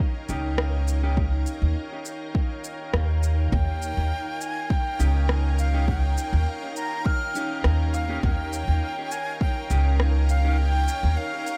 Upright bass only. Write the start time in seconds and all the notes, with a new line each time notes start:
0.29 C#2
1.62 D#2
2.94 D#2
3.52 D#2
3.97 D#2
4.99 C#2
6.33 D#2
7.64 D#2
8.23 D#2
8.68 D#2
9.70 C#2
11.03 D#2